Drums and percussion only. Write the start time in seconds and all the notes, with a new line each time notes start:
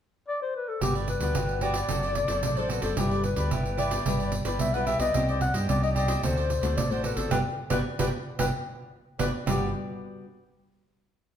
0.81 pandeiro
0.95 pandeiro
1.08 pandeiro
1.21 pandeiro
1.35 pandeiro
1.49 pandeiro
1.61 pandeiro
1.74 pandeiro
1.89 pandeiro
2.03 pandeiro
2.15 pandeiro
2.28 pandeiro
2.43 pandeiro
2.57 pandeiro
2.70 pandeiro
2.82 pandeiro
2.97 pandeiro
3.11 pandeiro
3.24 pandeiro
3.36 pandeiro
3.51 pandeiro
3.65 pandeiro
3.78 pandeiro
3.91 pandeiro
4.06 pandeiro
4.20 pandeiro
4.32 pandeiro
4.45 pandeiro
4.59 pandeiro
4.74 pandeiro
4.87 pandeiro
5.00 pandeiro
5.14 pandeiro
5.29 pandeiro
5.41 pandeiro
5.54 pandeiro
5.69 pandeiro
5.83 pandeiro
5.96 pandeiro
6.08 pandeiro
6.23 pandeiro
6.38 pandeiro
6.50 pandeiro
6.63 pandeiro
6.78 pandeiro
6.91 pandeiro
7.04 pandeiro
7.17 pandeiro
7.31 pandeiro
7.70 pandeiro
7.99 pandeiro
8.39 pandeiro
9.19 pandeiro
9.47 pandeiro